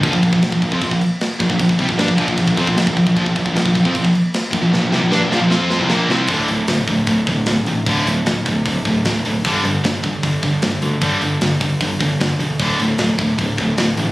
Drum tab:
CC |x-x-x-x-x-x-x-x-|x-x-x-x-x-x-x-x-|x-x-x-x-x-x-x-x-|----------------|
HH |----------------|----------------|----------------|----------------|
SD |----o-------o---|----o-------o---|----o-------o---|o-o-o-o-o-o-o-o-|
BD |oooo-ooooo----oo|oooo-ooooooo-ooo|oooo-ooooo----o-|----------------|

CC |----------------|----------------|----------------|----------------|
HH |o-o-o-o-o-o-o-o-|o-o-o-o-o-o-o-o-|o-o-o-o-o-o-o-o-|o-o-o-o-o-o-o-o-|
SD |----o-------o---|----o-------o---|----o-------o---|----o-------o---|
BD |o-----o-o-o-----|o-----o-o-o-----|o-----o-o-o-----|o-----o-o-o-----|

CC |----------------|
HH |o-o-o-o-o-o-o-o-|
SD |----o-------o---|
BD |o-----o-o-o-----|